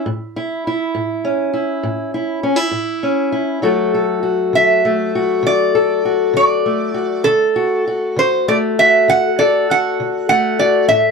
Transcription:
0.06 steel-string acoustic guitar A2
0.36 steel-string acoustic guitar E4
0.67 steel-string acoustic guitar E4
0.95 steel-string acoustic guitar A2
1.25 steel-string acoustic guitar C#4
1.54 steel-string acoustic guitar E4
1.83 steel-string acoustic guitar A2
2.14 steel-string acoustic guitar E4
2.43 steel-string acoustic guitar C#4
2.56 steel-string acoustic guitar E4
2.71 steel-string acoustic guitar A2
3.03 steel-string acoustic guitar C#4
3.32 steel-string acoustic guitar E4
3.62 steel-string acoustic guitar D3 F#3 A3 F#4 A4
3.94 steel-string acoustic guitar A4
4.23 steel-string acoustic guitar F#4
4.53 steel-string acoustic guitar D3, resonator guitar played with a steel bar E5
4.85 steel-string acoustic guitar A3
5.15 steel-string acoustic guitar F#4
5.43 steel-string acoustic guitar D3, resonator guitar played with a steel bar D5
5.75 steel-string acoustic guitar A4
6.05 steel-string acoustic guitar F#4
6.34 steel-string acoustic guitar D3, resonator guitar played with a steel bar D5
6.66 steel-string acoustic guitar A3
6.94 steel-string acoustic guitar F#4
7.24 steel-string acoustic guitar D3, resonator guitar played with a steel bar A4
7.56 steel-string acoustic guitar F#4
7.88 steel-string acoustic guitar F#4
8.16 steel-string acoustic guitar D3, resonator guitar played with a steel bar C5
8.48 steel-string acoustic guitar A3, resonator guitar played with a steel bar D5
8.79 steel-string acoustic guitar F#4, resonator guitar played with a steel bar E5
9.08 steel-string acoustic guitar D3, resonator guitar played with a steel bar F#5
9.39 steel-string acoustic guitar A4, resonator guitar played with a steel bar D5
9.70 steel-string acoustic guitar F#4, resonator guitar played with a steel bar F#5
10.00 steel-string acoustic guitar D3
10.29 steel-string acoustic guitar A3, resonator guitar played with a steel bar F#5
10.59 steel-string acoustic guitar F#4, resonator guitar played with a steel bar D5
10.88 steel-string acoustic guitar A2, resonator guitar played with a steel bar E5

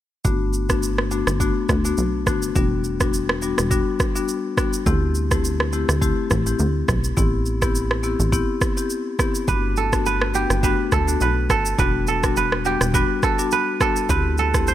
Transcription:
0.25 analog synth bass G1, marimba A3 B3 D4 F#4, kick, shaker
0.53 shaker
0.69 marimba A3 B3 D4 F#4, kick, cross-stick, shaker
0.83 shaker
0.98 cross-stick
1.11 marimba A3 B3 D4 F#4, shaker
1.27 analog synth bass G1, cross-stick, shaker
1.40 marimba A3 B3 D4 F#4, kick, shaker
1.69 analog synth bass D2, kick, cross-stick, shaker
1.85 marimba A3 B3 D4 F#4, shaker
1.97 analog synth bass B1, shaker
2.26 analog synth bass G1, marimba A3 B3 D4 F#4, kick, cross-stick, shaker
2.42 shaker
2.55 analog synth bass E1, marimba G3 B3 D4 F#4, kick, shaker
2.84 shaker
3.00 marimba G3 B3 D4 F#4, kick, cross-stick, shaker
3.14 shaker
3.29 cross-stick
3.42 marimba G3 B3 D4 F#4, shaker
3.58 analog synth bass E1, cross-stick, shaker
3.71 marimba G3 B3 D4 F#4, kick, shaker
4.00 kick, cross-stick, shaker
4.15 marimba G3 B3 D4 F#4, shaker
4.28 shaker
4.57 marimba G3 B3 D4 F#4, kick, cross-stick, shaker
4.73 shaker
4.86 analog synth bass D2, marimba A3 C4 E4 G4, kick, shaker
5.15 shaker
5.31 marimba A3 C4 E4 G4, kick, cross-stick, shaker
5.44 shaker
5.60 cross-stick
5.73 marimba A3 C4 E4 G4, shaker
5.89 analog synth bass D2, cross-stick, shaker
6.01 marimba A3 C4 E4 G4, kick, shaker
6.30 analog synth bass A1, kick, cross-stick, shaker
6.46 marimba A3 C4 E4 G4, shaker
6.59 analog synth bass D2, shaker
6.88 analog synth bass B1, kick, cross-stick, shaker
7.04 shaker
7.17 analog synth bass A1, marimba B3 C4 E4 G4, kick, shaker
7.46 shaker
7.62 marimba B3 C4 E4 G4, kick, cross-stick, shaker
7.75 shaker
7.91 cross-stick
8.03 marimba B3 C4 E4 G4, shaker
8.20 analog synth bass A1, shaker
8.32 marimba B3 C4 E4 G4, kick, shaker
8.61 kick, cross-stick, shaker
8.77 marimba B3 C4 E4 G4, shaker
8.90 shaker
9.19 marimba B3 C4 E4 G4, kick, cross-stick, shaker
9.35 shaker
9.48 analog synth bass G1, marimba A3 B3 D4 F#4, kora B4, kick, shaker
9.76 kora A4, shaker
9.92 marimba A3 B3 D4 F#4, kick, cross-stick, shaker
10.06 kora B4, shaker
10.21 cross-stick
10.34 marimba A3 B3 D4 F#4, kora G4, shaker
10.50 analog synth bass G1, cross-stick, shaker
10.63 marimba A3 B3 D4 F#4, kora B4, kick, shaker
10.92 analog synth bass D2, kora A4, kick, cross-stick, shaker
11.08 marimba A3 B3 D4 F#4, shaker
11.21 analog synth bass B1, kora B4, shaker
11.50 analog synth bass G1, kora A4, kick, cross-stick, shaker
11.65 shaker
11.78 analog synth bass E1, marimba G3 B3 D4 F#4, kora B4, kick, shaker
12.07 kora A4, shaker
12.23 marimba G3 B3 D4 F#4, kick, cross-stick, shaker
12.37 kora B4, shaker
12.52 cross-stick
12.65 marimba G3 B3 D4 F#4, kora G4, shaker
12.81 analog synth bass E1, cross-stick, shaker
12.94 marimba G3 B3 D4 F#4, kora B4, kick, shaker
13.23 kora A4, kick, cross-stick, shaker
13.39 marimba G3 B3 D4 F#4, shaker
13.51 kora B4, shaker
13.80 marimba G3 B3 D4 F#4, kora A4, kick, cross-stick, shaker
13.96 shaker
14.09 analog synth bass D2, marimba A3 C4 E4 G4, kora B4, kick, shaker
14.38 kora A4, shaker
14.54 marimba A3 C4 E4 G4, kick, cross-stick, shaker
14.67 kora C5, shaker

